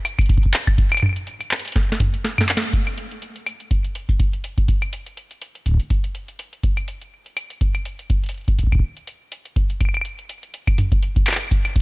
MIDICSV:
0, 0, Header, 1, 2, 480
1, 0, Start_track
1, 0, Tempo, 487805
1, 769, Time_signature, 4, 2, 24, 8
1, 11629, End_track
2, 0, Start_track
2, 0, Title_t, "Drums"
2, 49, Note_on_c, 9, 42, 97
2, 49, Note_on_c, 9, 75, 59
2, 147, Note_off_c, 9, 42, 0
2, 147, Note_off_c, 9, 75, 0
2, 183, Note_on_c, 9, 36, 97
2, 183, Note_on_c, 9, 42, 36
2, 183, Note_on_c, 9, 75, 55
2, 209, Note_off_c, 9, 42, 0
2, 209, Note_on_c, 9, 42, 31
2, 254, Note_off_c, 9, 42, 0
2, 254, Note_on_c, 9, 42, 25
2, 281, Note_off_c, 9, 36, 0
2, 282, Note_off_c, 9, 75, 0
2, 289, Note_off_c, 9, 42, 0
2, 289, Note_on_c, 9, 36, 106
2, 289, Note_on_c, 9, 42, 61
2, 333, Note_off_c, 9, 42, 0
2, 333, Note_on_c, 9, 42, 16
2, 369, Note_off_c, 9, 36, 0
2, 369, Note_off_c, 9, 42, 0
2, 369, Note_on_c, 9, 36, 87
2, 369, Note_on_c, 9, 42, 14
2, 423, Note_off_c, 9, 42, 0
2, 423, Note_on_c, 9, 42, 40
2, 449, Note_off_c, 9, 36, 0
2, 449, Note_on_c, 9, 36, 74
2, 522, Note_off_c, 9, 42, 0
2, 529, Note_on_c, 9, 39, 117
2, 529, Note_on_c, 9, 42, 91
2, 529, Note_on_c, 9, 82, 65
2, 547, Note_off_c, 9, 36, 0
2, 627, Note_off_c, 9, 39, 0
2, 627, Note_off_c, 9, 42, 0
2, 627, Note_off_c, 9, 82, 0
2, 663, Note_on_c, 9, 36, 119
2, 663, Note_on_c, 9, 42, 39
2, 663, Note_on_c, 9, 75, 55
2, 761, Note_off_c, 9, 36, 0
2, 761, Note_off_c, 9, 42, 0
2, 761, Note_off_c, 9, 75, 0
2, 769, Note_on_c, 9, 36, 119
2, 769, Note_on_c, 9, 42, 67
2, 867, Note_off_c, 9, 36, 0
2, 867, Note_off_c, 9, 42, 0
2, 903, Note_on_c, 9, 42, 39
2, 903, Note_on_c, 9, 75, 80
2, 930, Note_off_c, 9, 75, 0
2, 930, Note_on_c, 9, 75, 65
2, 956, Note_off_c, 9, 42, 0
2, 956, Note_off_c, 9, 75, 0
2, 956, Note_on_c, 9, 42, 88
2, 956, Note_on_c, 9, 75, 53
2, 1009, Note_off_c, 9, 75, 0
2, 1009, Note_on_c, 9, 45, 105
2, 1009, Note_on_c, 9, 75, 37
2, 1042, Note_off_c, 9, 75, 0
2, 1042, Note_on_c, 9, 75, 30
2, 1054, Note_off_c, 9, 42, 0
2, 1076, Note_off_c, 9, 75, 0
2, 1076, Note_on_c, 9, 75, 24
2, 1107, Note_off_c, 9, 45, 0
2, 1110, Note_off_c, 9, 75, 0
2, 1110, Note_on_c, 9, 75, 20
2, 1143, Note_on_c, 9, 42, 42
2, 1208, Note_off_c, 9, 75, 0
2, 1242, Note_off_c, 9, 42, 0
2, 1249, Note_on_c, 9, 42, 70
2, 1347, Note_off_c, 9, 42, 0
2, 1383, Note_on_c, 9, 42, 40
2, 1383, Note_on_c, 9, 75, 37
2, 1482, Note_off_c, 9, 42, 0
2, 1482, Note_off_c, 9, 75, 0
2, 1489, Note_on_c, 9, 39, 115
2, 1489, Note_on_c, 9, 42, 44
2, 1534, Note_off_c, 9, 42, 0
2, 1534, Note_on_c, 9, 42, 51
2, 1569, Note_off_c, 9, 42, 0
2, 1569, Note_on_c, 9, 42, 58
2, 1587, Note_off_c, 9, 39, 0
2, 1624, Note_off_c, 9, 42, 0
2, 1624, Note_on_c, 9, 42, 68
2, 1649, Note_off_c, 9, 42, 0
2, 1649, Note_on_c, 9, 42, 71
2, 1694, Note_off_c, 9, 42, 0
2, 1694, Note_on_c, 9, 42, 83
2, 1729, Note_off_c, 9, 42, 0
2, 1729, Note_on_c, 9, 36, 123
2, 1729, Note_on_c, 9, 38, 68
2, 1729, Note_on_c, 9, 42, 70
2, 1796, Note_off_c, 9, 42, 0
2, 1796, Note_on_c, 9, 42, 40
2, 1827, Note_off_c, 9, 36, 0
2, 1827, Note_off_c, 9, 38, 0
2, 1889, Note_on_c, 9, 38, 76
2, 1895, Note_off_c, 9, 42, 0
2, 1969, Note_on_c, 9, 36, 112
2, 1969, Note_on_c, 9, 42, 102
2, 1969, Note_on_c, 9, 45, 92
2, 1969, Note_on_c, 9, 82, 82
2, 1987, Note_off_c, 9, 38, 0
2, 2067, Note_off_c, 9, 36, 0
2, 2067, Note_off_c, 9, 42, 0
2, 2067, Note_off_c, 9, 45, 0
2, 2067, Note_off_c, 9, 82, 0
2, 2103, Note_on_c, 9, 42, 38
2, 2202, Note_off_c, 9, 42, 0
2, 2209, Note_on_c, 9, 38, 88
2, 2209, Note_on_c, 9, 42, 64
2, 2307, Note_off_c, 9, 38, 0
2, 2307, Note_off_c, 9, 42, 0
2, 2343, Note_on_c, 9, 42, 41
2, 2343, Note_on_c, 9, 45, 96
2, 2343, Note_on_c, 9, 75, 82
2, 2369, Note_on_c, 9, 38, 101
2, 2442, Note_off_c, 9, 42, 0
2, 2442, Note_off_c, 9, 45, 0
2, 2442, Note_off_c, 9, 75, 0
2, 2449, Note_on_c, 9, 39, 120
2, 2449, Note_on_c, 9, 42, 96
2, 2467, Note_off_c, 9, 38, 0
2, 2529, Note_on_c, 9, 38, 106
2, 2547, Note_off_c, 9, 39, 0
2, 2547, Note_off_c, 9, 42, 0
2, 2583, Note_on_c, 9, 42, 39
2, 2627, Note_off_c, 9, 38, 0
2, 2682, Note_off_c, 9, 42, 0
2, 2689, Note_on_c, 9, 36, 109
2, 2689, Note_on_c, 9, 42, 61
2, 2787, Note_off_c, 9, 36, 0
2, 2787, Note_off_c, 9, 42, 0
2, 2823, Note_on_c, 9, 42, 38
2, 2823, Note_on_c, 9, 75, 49
2, 2922, Note_off_c, 9, 42, 0
2, 2922, Note_off_c, 9, 75, 0
2, 2929, Note_on_c, 9, 42, 87
2, 3027, Note_off_c, 9, 42, 0
2, 3063, Note_on_c, 9, 42, 39
2, 3162, Note_off_c, 9, 42, 0
2, 3169, Note_on_c, 9, 42, 59
2, 3268, Note_off_c, 9, 42, 0
2, 3304, Note_on_c, 9, 42, 37
2, 3402, Note_off_c, 9, 42, 0
2, 3409, Note_on_c, 9, 42, 87
2, 3409, Note_on_c, 9, 75, 59
2, 3508, Note_off_c, 9, 42, 0
2, 3508, Note_off_c, 9, 75, 0
2, 3544, Note_on_c, 9, 42, 39
2, 3642, Note_off_c, 9, 42, 0
2, 3649, Note_on_c, 9, 36, 112
2, 3649, Note_on_c, 9, 42, 61
2, 3747, Note_off_c, 9, 36, 0
2, 3748, Note_off_c, 9, 42, 0
2, 3783, Note_on_c, 9, 42, 36
2, 3882, Note_off_c, 9, 42, 0
2, 3889, Note_on_c, 9, 42, 94
2, 3987, Note_off_c, 9, 42, 0
2, 4023, Note_on_c, 9, 36, 95
2, 4023, Note_on_c, 9, 42, 37
2, 4121, Note_off_c, 9, 36, 0
2, 4122, Note_off_c, 9, 42, 0
2, 4129, Note_on_c, 9, 36, 106
2, 4129, Note_on_c, 9, 42, 58
2, 4227, Note_off_c, 9, 36, 0
2, 4227, Note_off_c, 9, 42, 0
2, 4263, Note_on_c, 9, 42, 37
2, 4362, Note_off_c, 9, 42, 0
2, 4369, Note_on_c, 9, 42, 85
2, 4467, Note_off_c, 9, 42, 0
2, 4503, Note_on_c, 9, 36, 104
2, 4503, Note_on_c, 9, 42, 36
2, 4602, Note_off_c, 9, 36, 0
2, 4602, Note_off_c, 9, 42, 0
2, 4609, Note_on_c, 9, 36, 110
2, 4609, Note_on_c, 9, 42, 63
2, 4707, Note_off_c, 9, 36, 0
2, 4707, Note_off_c, 9, 42, 0
2, 4744, Note_on_c, 9, 42, 39
2, 4744, Note_on_c, 9, 75, 50
2, 4842, Note_off_c, 9, 42, 0
2, 4842, Note_off_c, 9, 75, 0
2, 4849, Note_on_c, 9, 42, 91
2, 4948, Note_off_c, 9, 42, 0
2, 4983, Note_on_c, 9, 42, 38
2, 5082, Note_off_c, 9, 42, 0
2, 5089, Note_on_c, 9, 42, 63
2, 5187, Note_off_c, 9, 42, 0
2, 5223, Note_on_c, 9, 42, 36
2, 5322, Note_off_c, 9, 42, 0
2, 5329, Note_on_c, 9, 42, 90
2, 5427, Note_off_c, 9, 42, 0
2, 5463, Note_on_c, 9, 42, 37
2, 5562, Note_off_c, 9, 42, 0
2, 5569, Note_on_c, 9, 36, 53
2, 5569, Note_on_c, 9, 42, 62
2, 5596, Note_off_c, 9, 36, 0
2, 5596, Note_on_c, 9, 36, 65
2, 5622, Note_off_c, 9, 36, 0
2, 5622, Note_on_c, 9, 36, 80
2, 5649, Note_off_c, 9, 36, 0
2, 5649, Note_on_c, 9, 36, 90
2, 5667, Note_off_c, 9, 42, 0
2, 5676, Note_off_c, 9, 36, 0
2, 5676, Note_on_c, 9, 36, 97
2, 5703, Note_on_c, 9, 42, 36
2, 5775, Note_off_c, 9, 36, 0
2, 5802, Note_off_c, 9, 42, 0
2, 5809, Note_on_c, 9, 36, 111
2, 5809, Note_on_c, 9, 42, 93
2, 5907, Note_off_c, 9, 36, 0
2, 5907, Note_off_c, 9, 42, 0
2, 5943, Note_on_c, 9, 42, 38
2, 6042, Note_off_c, 9, 42, 0
2, 6049, Note_on_c, 9, 42, 58
2, 6147, Note_off_c, 9, 42, 0
2, 6183, Note_on_c, 9, 42, 39
2, 6281, Note_off_c, 9, 42, 0
2, 6289, Note_on_c, 9, 42, 96
2, 6387, Note_off_c, 9, 42, 0
2, 6423, Note_on_c, 9, 42, 37
2, 6522, Note_off_c, 9, 42, 0
2, 6529, Note_on_c, 9, 36, 122
2, 6529, Note_on_c, 9, 42, 61
2, 6627, Note_off_c, 9, 36, 0
2, 6627, Note_off_c, 9, 42, 0
2, 6663, Note_on_c, 9, 42, 36
2, 6663, Note_on_c, 9, 75, 46
2, 6762, Note_off_c, 9, 42, 0
2, 6762, Note_off_c, 9, 75, 0
2, 6769, Note_on_c, 9, 42, 92
2, 6867, Note_off_c, 9, 42, 0
2, 6903, Note_on_c, 9, 42, 36
2, 7001, Note_off_c, 9, 42, 0
2, 7143, Note_on_c, 9, 42, 35
2, 7241, Note_off_c, 9, 42, 0
2, 7249, Note_on_c, 9, 42, 85
2, 7249, Note_on_c, 9, 75, 55
2, 7347, Note_off_c, 9, 42, 0
2, 7347, Note_off_c, 9, 75, 0
2, 7383, Note_on_c, 9, 42, 38
2, 7481, Note_off_c, 9, 42, 0
2, 7489, Note_on_c, 9, 36, 125
2, 7489, Note_on_c, 9, 42, 59
2, 7587, Note_off_c, 9, 36, 0
2, 7587, Note_off_c, 9, 42, 0
2, 7623, Note_on_c, 9, 42, 37
2, 7623, Note_on_c, 9, 75, 45
2, 7721, Note_off_c, 9, 42, 0
2, 7721, Note_off_c, 9, 75, 0
2, 7729, Note_on_c, 9, 42, 93
2, 7827, Note_off_c, 9, 42, 0
2, 7863, Note_on_c, 9, 42, 38
2, 7962, Note_off_c, 9, 42, 0
2, 7969, Note_on_c, 9, 36, 115
2, 7969, Note_on_c, 9, 42, 61
2, 8067, Note_off_c, 9, 36, 0
2, 8067, Note_off_c, 9, 42, 0
2, 8103, Note_on_c, 9, 42, 34
2, 8129, Note_off_c, 9, 42, 0
2, 8129, Note_on_c, 9, 42, 30
2, 8156, Note_off_c, 9, 42, 0
2, 8156, Note_on_c, 9, 42, 90
2, 8182, Note_off_c, 9, 42, 0
2, 8182, Note_on_c, 9, 42, 20
2, 8209, Note_off_c, 9, 42, 0
2, 8209, Note_on_c, 9, 42, 17
2, 8242, Note_off_c, 9, 42, 0
2, 8242, Note_on_c, 9, 42, 14
2, 8276, Note_off_c, 9, 42, 0
2, 8276, Note_on_c, 9, 42, 11
2, 8310, Note_off_c, 9, 42, 0
2, 8310, Note_on_c, 9, 42, 9
2, 8343, Note_off_c, 9, 42, 0
2, 8343, Note_on_c, 9, 36, 116
2, 8343, Note_on_c, 9, 42, 37
2, 8441, Note_off_c, 9, 36, 0
2, 8442, Note_off_c, 9, 42, 0
2, 8449, Note_on_c, 9, 36, 54
2, 8449, Note_on_c, 9, 42, 57
2, 8493, Note_off_c, 9, 36, 0
2, 8493, Note_on_c, 9, 36, 63
2, 8529, Note_off_c, 9, 36, 0
2, 8529, Note_on_c, 9, 36, 72
2, 8547, Note_off_c, 9, 42, 0
2, 8583, Note_off_c, 9, 36, 0
2, 8583, Note_on_c, 9, 36, 84
2, 8583, Note_on_c, 9, 42, 35
2, 8583, Note_on_c, 9, 75, 48
2, 8609, Note_off_c, 9, 36, 0
2, 8609, Note_on_c, 9, 36, 97
2, 8653, Note_off_c, 9, 36, 0
2, 8653, Note_on_c, 9, 36, 101
2, 8682, Note_off_c, 9, 42, 0
2, 8682, Note_off_c, 9, 75, 0
2, 8752, Note_off_c, 9, 36, 0
2, 8823, Note_on_c, 9, 42, 35
2, 8922, Note_off_c, 9, 42, 0
2, 8929, Note_on_c, 9, 42, 60
2, 9027, Note_off_c, 9, 42, 0
2, 9169, Note_on_c, 9, 42, 83
2, 9267, Note_off_c, 9, 42, 0
2, 9303, Note_on_c, 9, 42, 37
2, 9402, Note_off_c, 9, 42, 0
2, 9409, Note_on_c, 9, 36, 122
2, 9409, Note_on_c, 9, 42, 59
2, 9507, Note_off_c, 9, 36, 0
2, 9507, Note_off_c, 9, 42, 0
2, 9543, Note_on_c, 9, 42, 36
2, 9642, Note_off_c, 9, 42, 0
2, 9649, Note_on_c, 9, 36, 113
2, 9649, Note_on_c, 9, 42, 92
2, 9649, Note_on_c, 9, 75, 35
2, 9694, Note_off_c, 9, 75, 0
2, 9694, Note_on_c, 9, 75, 41
2, 9729, Note_off_c, 9, 75, 0
2, 9729, Note_on_c, 9, 75, 46
2, 9747, Note_off_c, 9, 36, 0
2, 9747, Note_off_c, 9, 42, 0
2, 9784, Note_off_c, 9, 75, 0
2, 9784, Note_on_c, 9, 42, 38
2, 9784, Note_on_c, 9, 75, 52
2, 9809, Note_off_c, 9, 75, 0
2, 9809, Note_on_c, 9, 75, 57
2, 9854, Note_off_c, 9, 75, 0
2, 9854, Note_on_c, 9, 75, 61
2, 9882, Note_off_c, 9, 42, 0
2, 9889, Note_on_c, 9, 42, 56
2, 9952, Note_off_c, 9, 75, 0
2, 9987, Note_off_c, 9, 42, 0
2, 10024, Note_on_c, 9, 42, 39
2, 10122, Note_off_c, 9, 42, 0
2, 10129, Note_on_c, 9, 42, 84
2, 10227, Note_off_c, 9, 42, 0
2, 10264, Note_on_c, 9, 42, 37
2, 10362, Note_off_c, 9, 42, 0
2, 10369, Note_on_c, 9, 42, 68
2, 10468, Note_off_c, 9, 42, 0
2, 10503, Note_on_c, 9, 36, 109
2, 10504, Note_on_c, 9, 42, 41
2, 10504, Note_on_c, 9, 75, 55
2, 10602, Note_off_c, 9, 36, 0
2, 10602, Note_off_c, 9, 42, 0
2, 10602, Note_off_c, 9, 75, 0
2, 10609, Note_on_c, 9, 42, 102
2, 10609, Note_on_c, 9, 45, 97
2, 10708, Note_off_c, 9, 42, 0
2, 10708, Note_off_c, 9, 45, 0
2, 10743, Note_on_c, 9, 36, 120
2, 10744, Note_on_c, 9, 42, 41
2, 10842, Note_off_c, 9, 36, 0
2, 10842, Note_off_c, 9, 42, 0
2, 10849, Note_on_c, 9, 42, 67
2, 10948, Note_off_c, 9, 42, 0
2, 10983, Note_on_c, 9, 36, 106
2, 10984, Note_on_c, 9, 42, 39
2, 11082, Note_off_c, 9, 36, 0
2, 11082, Note_off_c, 9, 42, 0
2, 11089, Note_on_c, 9, 39, 108
2, 11089, Note_on_c, 9, 42, 100
2, 11089, Note_on_c, 9, 75, 60
2, 11134, Note_off_c, 9, 39, 0
2, 11134, Note_off_c, 9, 75, 0
2, 11134, Note_on_c, 9, 39, 92
2, 11134, Note_on_c, 9, 75, 50
2, 11169, Note_off_c, 9, 39, 0
2, 11169, Note_off_c, 9, 75, 0
2, 11169, Note_on_c, 9, 39, 75
2, 11169, Note_on_c, 9, 75, 42
2, 11188, Note_off_c, 9, 42, 0
2, 11224, Note_off_c, 9, 75, 0
2, 11224, Note_on_c, 9, 42, 41
2, 11224, Note_on_c, 9, 75, 33
2, 11249, Note_off_c, 9, 75, 0
2, 11249, Note_on_c, 9, 75, 28
2, 11267, Note_off_c, 9, 39, 0
2, 11294, Note_off_c, 9, 75, 0
2, 11294, Note_on_c, 9, 75, 22
2, 11322, Note_off_c, 9, 42, 0
2, 11329, Note_on_c, 9, 36, 108
2, 11329, Note_on_c, 9, 42, 72
2, 11329, Note_on_c, 9, 82, 73
2, 11393, Note_off_c, 9, 75, 0
2, 11427, Note_off_c, 9, 36, 0
2, 11427, Note_off_c, 9, 42, 0
2, 11427, Note_off_c, 9, 82, 0
2, 11464, Note_on_c, 9, 42, 41
2, 11464, Note_on_c, 9, 75, 54
2, 11562, Note_off_c, 9, 42, 0
2, 11562, Note_off_c, 9, 75, 0
2, 11569, Note_on_c, 9, 36, 112
2, 11569, Note_on_c, 9, 42, 47
2, 11569, Note_on_c, 9, 82, 83
2, 11629, Note_off_c, 9, 36, 0
2, 11629, Note_off_c, 9, 42, 0
2, 11629, Note_off_c, 9, 82, 0
2, 11629, End_track
0, 0, End_of_file